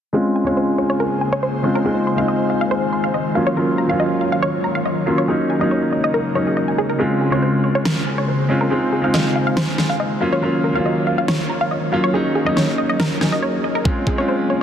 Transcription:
0.13 G#3 C4 C#4 F4 G#4 C5
0.36 G#5
0.44 G#3 C4 C#4 C#5
0.48 F4
0.57 C5
0.78 C#5
0.90 C#5
1.00 A#4
1.21 G#5
1.33 C#5
1.43 C5
1.63 G#3 C4 C#4 F4 C#5
1.75 A#4
1.84 D#3 G#3 C4 D#4 F4 G#4
2.07 C6
2.16 G#3 C4 D#4 F4 F5
2.28 D#5
2.50 F5
2.61 F5
2.71 C5
2.93 C6
3.04 F5
3.14 D#5
3.35 F#3 A#3 C#4 F4 C#5 F5
3.47 C#5
3.56 F#3 A#3 C#4 F4 A#4
3.78 A#5
3.87 F#3 A#3 C#4 F4 F5
4.00 D#5
4.21 F5
4.32 F5
4.42 C#5
4.64 A#5
4.75 F5
4.85 D#5
5.06 F#3 A#3 C#4 F4 F5
5.18 C#5
5.27 C#3 F#3 A#3 C#4 D#4 G#4
5.50 G#5
5.59 F#3 A#3 C#4 D#4 D#5
5.71 C#5
5.93 D#5
6.04 D#5
6.14 A#4
6.34 F#3 A#3 C#4 D#4 C#5
6.47 G#4
6.57 D#5
6.68 G#5
6.78 G#4
6.89 A#4
6.99 G#3 C4 C#4 F4 G#4 C5
7.21 G#4
7.30 G#3 C4 C#4 C#5
7.34 F4
7.42 C5
7.64 C#5
7.75 C#5
7.85 A#4, snare
8.07 G#5
8.18 C#5
8.28 C5
8.49 G#3 C4 C#4 F4 C#5
8.61 A#4
8.70 D#3 G#3 C4 D#4 F4 G#4
8.93 G#4
9.02 G#3 C4 D#4 F5
9.06 F4
9.14 D#5, snare
9.36 F5
9.47 F5
9.57 C5, snare
9.78 C6, snare
9.90 F5
10.00 D#5
10.20 F#3 A#3 C#4 F4 C#5 F5
10.33 C#5
10.41 F#3 A#3 C#4 F4 A#4
10.64 A#4
10.73 F#3 A#3 C#4 F4 F5
10.86 D#5
11.07 F5
11.18 F5
11.28 C#5, snare
11.50 A#5
11.61 F5
11.71 D#5
11.92 F#3 A#3 C#4 F4 F5
12.04 C#5
12.13 F#3 A#3 C#4 D#4 G#4
12.35 G#4
12.45 F#3 A#3 C#4 D#5
12.49 D#4
12.57 C#5, snare
12.78 D#5
12.89 D#5
13.00 A#4, snare
13.20 F#3 A#3 C#4 D#4 G#5, snare
13.32 D#5
13.43 C#5
13.64 D#5
13.75 A#4
13.84 G#3 C4 C#4 F4 G#4, kick
14.07 G#4, kick
14.16 G#3 C4 C#4 C#5
14.20 F4
14.28 C5
14.50 C#5

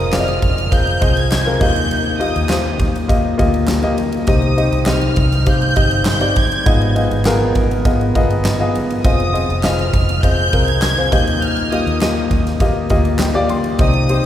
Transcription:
Already playing: C4 F4 G#4 A#4 D#5
0.00 F1
0.12 C4 F4 G#4 D5 F6, snare, clap, ride
0.20 D#5
0.28 ride
0.42 F1 F6, kick, ride
0.58 ride
0.71 C4 F4 G#4 F5 G6, kick, ride
0.87 ride
1.00 C2 C4 F4 G#4 D#5, kick, ride
1.15 G#6, ride
1.32 snare, clap, ride
1.45 C4 F4 G#4 A#4
1.60 D#2 D#3 A#3 F4 G4 D#5 G6, kick, crash
1.76 ride
1.91 ride
2.19 A#3 F4 G4 D#5 D#6, ride
2.36 D#2, ride
2.49 A#3 F4 G4 C5, snare, clap, ride
2.79 D#2, kick, ride
2.95 ride
3.08 A#3 F4 G4 D#5, kick, ride
3.38 D2 A#3 F4 G4 D#5, kick, ride
3.54 ride
3.68 snare, clap, ride
3.82 A#3 F4 G4 D#5, ride
3.98 ride
4.12 ride
4.27 C2 C3 C4 D#4 G4 D#5 D#6, kick, ride
4.42 ride
4.57 C4 D#4 G4 D#5, ride
4.72 C2, ride
4.86 C4 D#4 G4 D#5 F6, snare, clap, ride
5.01 ride
5.16 C2, kick, ride
5.32 snare, ride
5.46 C4 D#4 G4 F5 G6, kick, ride
5.62 ride
5.75 G1 C4 D#4 G4 D#5, kick, ride
5.91 ride
6.05 G6, snare, clap, ride
6.20 C4 D#4 G4 D5, ride
6.36 G#6, kick, ride
6.52 ride
6.66 G#1 G#2 B3 F4 G#4 D#5, kick, ride
6.81 ride
6.95 B3 F4 G#4 D#5, ride
7.11 G#1, ride
7.25 B3 F4 G#4 A#4, snare, clap, ride
7.55 G#1, kick, ride
7.71 ride
7.85 B3 F4 G#4 D#5, kick, ride
8.01 ride
8.15 G1 B3 F4 G#4 D#5, kick, ride
8.30 ride
8.44 snare, clap, ride
8.59 B3 F4 G#4 D#5
8.75 ride
8.90 ride
9.03 F1 C4 F4 G#4 D#5 D#6, kick, ride
9.20 ride
9.33 C4 F4 G#4 D#5, ride
9.49 F1, ride
9.63 C4 F4 G#4 D#5 F6, snare, clap, ride
9.79 ride
9.93 F1, kick, ride
10.09 ride
10.22 C4 F4 G#4 D#5 G6, kick, ride
10.53 C2 C4 F4 G#4 A#4, kick, ride
10.66 G#6, ride
10.82 snare, clap, ride
10.97 C4 F4 G#4 C5
11.11 D#2 D#3 A#3 F4 G4 D#5 G6, kick, ride
11.27 ride
11.42 F6, ride
11.57 ride
11.71 A#3 F4 G4 D#5 D#6, ride
11.86 D#2, ride
12.01 A#3 F4 G4 D#5, snare, clap, ride
12.31 D#2, kick, ride
12.46 snare, ride
12.60 A#3 F4 G4 D#5, kick, ride
12.89 D2 A#3 F4 G4 D#5, kick, ride
13.05 ride
13.19 G5, snare, clap, ride
13.34 A#3 F4 G4 D5
13.49 C6, ride
13.64 ride
13.79 C2 C3 C4 D#4 G4 D#5 D#6, kick, ride
13.93 ride
14.09 C4 D#4 G4 C5, ride

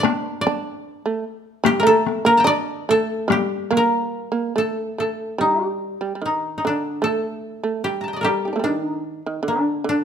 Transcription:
Already playing: G5 A5 A#5
0.00 D4 D5
0.05 taiko rim, taiko high
0.27 A#4
0.41 D5
0.47 D4, taiko rim, taiko high
0.93 A#4
1.06 A3
1.64 G3 G4, taiko rim, taiko high
1.80 A3 A#4
1.87 A4
2.06 taiko rim, taiko high
2.25 A#3 A#4
2.37 G5 A5 A#5
2.44 D4 D5 D#5
2.89 A3 A4
3.28 G3 G4, taiko rim, taiko high
3.71 A#3, taiko rim, taiko high
3.77 A#4
4.32 A#3
4.56 A3 A4
4.98 A3 A4
5.38 G3 D#4
5.67 G4
6.01 G3
6.15 G3
6.22 D#3 D#4
6.58 D#4
6.65 D3 D4
7.02 A3 A4
7.63 A3
7.84 G3 G4
8.01 A5 A#5
8.08 G5
8.13 D5 D#5
8.21 G4 A4 A#4
8.25 G3
8.45 D#4 G4
8.53 A3 A#3 D4
8.59 G3
8.64 D#3 D4
8.83 D#4
9.26 D#3
9.43 D3
9.48 D4
9.84 D3
9.89 D4

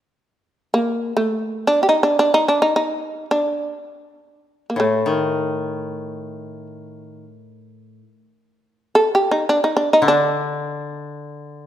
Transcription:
0.74 A#3
1.17 A3
1.67 D4
1.83 G4
1.89 D#4
2.03 D4
2.19 D4
2.34 D#4
2.48 D4
2.62 D#4
2.76 D#4
3.31 D4
4.70 A#3
4.76 A2 A3
5.06 D#3
8.95 A4
9.15 G4
9.31 D#4
9.49 D4
9.64 D#4
9.77 D4
9.93 D#4
10.02 D3
10.08 D4

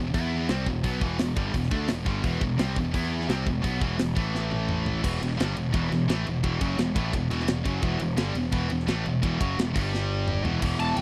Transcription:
Already playing: E1 E2 B2
0.14 E2 E3 B3 E4, kick, open hi-hat
0.48 C2 C3 G3 C4, snare, open hi-hat
0.66 E1 E2 B2, kick
0.84 B1 B2 F#3 B3, kick, open hi-hat
1.01 E1 E2 B2 E3, kick
1.19 E1 E2 B2, snare, open hi-hat
1.36 G1 G2 D3 G3, kick
1.54 E1 E2 B2, kick, open hi-hat
1.63 snare
1.71 D2 D3 A3 D4, kick
1.88 E1 E2 B2, snare, open hi-hat
2.06 G1 G2 D3 G3, kick
2.23 E1 E2 B2 E3, kick, open hi-hat
2.41 E1 E2 B2, kick
2.58 C2 C3 G3 C4, snare, open hi-hat
2.76 E1 E2 B2, kick
2.94 E2 E3 B3 E4, kick, open hi-hat
3.04 snare
3.21 snare
3.28 C2 C3 G3 C4, snare, open hi-hat
3.46 E1 E2 B2, kick
3.62 B1 B2 F#3 B3, kick, open hi-hat
3.80 E1 E2 B2 E3, kick
3.98 E1 E2 B2, snare, open hi-hat
4.15 A1 A2 E3 A3, kick
4.35 snare
4.51 high tom
4.69 mid tom
4.86 floor tom
5.03 E1 E2 B2 E3, kick, crash
5.21 E1 E2 B2, ride
5.37 G1 G2 D3 G3, snare, ride
5.56 E1 E2 B2, ride
5.73 E1 E2 B2 E3, kick, ride
5.90 E1 E2 B2, snare, ride
6.08 A1 A2 E3 A3, snare, ride
6.25 E1 E2 B2, ride
6.43 E1 E2 B2 E3, kick, ride
6.61 F#1 F#2 C#3 F#3, kick, ride
6.78 E1 E2 B2, snare, ride
6.95 A1 A2 E3 A3, kick, ride
7.12 E1 E2 B2, kick, ride
7.31 E1 E2 B2 E3, snare, ride
7.40 snare
7.47 E1 E2 B2, snare, ride
7.65 F#1 F#2 C#3 F#3, kick, ride
7.82 E1 E2 B2 E3, kick, ride
8.00 E1 E2 B2, ride
8.17 G1 G2 D3 G3, snare, ride
8.35 E1 E2 B2, ride
8.52 E1 E2 B2 E3, kick, ride
8.70 E1 E2 B2, ride
8.80 snare
8.87 A1 A2 E3 A3, snare, ride
9.05 E1 E2 B2, ride
9.22 E1 E2 B2 E3, kick, ride
9.40 F#1 F#2 C#3 F#3, kick, ride
9.58 E1 E2 B2, snare, ride
9.74 G1 G2 D3 G3, kick, crash
9.94 snare
10.28 mid tom
10.44 E1 E2 B2 E3, floor tom
10.61 E1 E2 B2 E3, kick, crash
10.79 E1 A5, ride
10.96 E1 G5, ride

